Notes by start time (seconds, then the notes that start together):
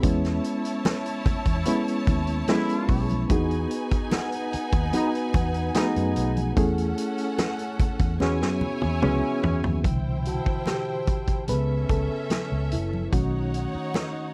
Already playing: B5
0.03 E2 G#3 B3 C#4 E4 C#5 E5 A5, kick, closed hi-hat, muted conga
0.25 snare, closed hi-hat
0.44 closed hi-hat
0.65 closed hi-hat
0.85 snare, closed hi-hat, high conga
1.06 closed hi-hat
1.26 muted fingered electric bass stroke, kick, closed hi-hat, muted conga, low conga
1.45 E2, kick, closed hi-hat
1.65 G#3 A3 B3 C#4 E4, closed hi-hat, muted conga
1.88 closed hi-hat
2.07 D#2, kick, closed hi-hat, muted conga, low conga
2.27 closed hi-hat
2.48 G#3 A3 B3 C#4 E4, snare, closed hi-hat, high conga
2.69 closed hi-hat
2.75 B5
2.89 B1, kick, open hi-hat
3.01 C#6
3.09 closed hi-hat, high conga
3.30 E2 A#3 D#4 F#4 G#4 B4 G#5, kick, closed hi-hat, muted conga
3.36 B3
3.51 closed hi-hat
3.71 closed hi-hat
3.91 kick, closed hi-hat
4.11 F#5, snare, closed hi-hat, high conga
4.32 closed hi-hat
4.53 muted fingered electric bass stroke, closed hi-hat
4.72 D#2, kick, closed hi-hat
4.93 G#3 B3 D#4 F#4 B4, closed hi-hat, muted conga
5.15 closed hi-hat
5.34 E2 F#5, kick, closed hi-hat, muted conga, low conga
5.54 closed hi-hat
5.74 G#3 A3 B3 D#4 F#4 G#4, snare, closed hi-hat, high conga
5.81 B3
5.96 F#2, closed hi-hat
6.16 B1, closed hi-hat
6.37 closed hi-hat, high conga
6.56 E2 A3 C#4 E4 G#4 A4 F#5, kick, closed hi-hat, muted conga
6.78 closed hi-hat
6.98 closed hi-hat
7.18 closed hi-hat
7.38 snare, closed hi-hat, high conga
7.59 closed hi-hat
7.79 muted fingered electric bass stroke, kick, closed hi-hat, low conga
7.99 E2, kick, closed hi-hat
8.20 E2 E3 G#3 B3 C#4 E4 F#4 G#4 C#5 G#5, snare, muted conga
8.42 F#2, snare
8.61 muted conga, low conga
8.82 E2, high tom
9.02 C#2 E3 G#3 B3 C#4 F#4 G#4 E5, mid tom, high conga
9.43 E2, floor tom
9.64 D#2, floor tom, high conga
9.84 C2 B2 D3 E3 E4 C5 G5, kick, closed hi-hat, muted conga
10.25 F#4 A5, closed hi-hat
10.46 muted fingered electric bass stroke, kick
10.66 G4, snare, closed hi-hat, high conga
11.07 kick, closed hi-hat, muted conga
11.27 kick, closed hi-hat
11.48 C#2 C#3 B3 C#4 G#4 A4 B4 E5, closed hi-hat, muted conga
11.89 C#2 A4, kick, closed hi-hat, muted conga, low conga
12.30 snare, closed hi-hat, high conga
12.52 C#2
12.72 F#1 E4, closed hi-hat
12.93 high conga
13.12 B1 D#3 A3 C#4 D#4 F#4 C#5 F#5, kick, closed hi-hat, muted conga
13.54 closed hi-hat
13.75 muted fingered electric bass stroke
13.94 snare, closed hi-hat, high conga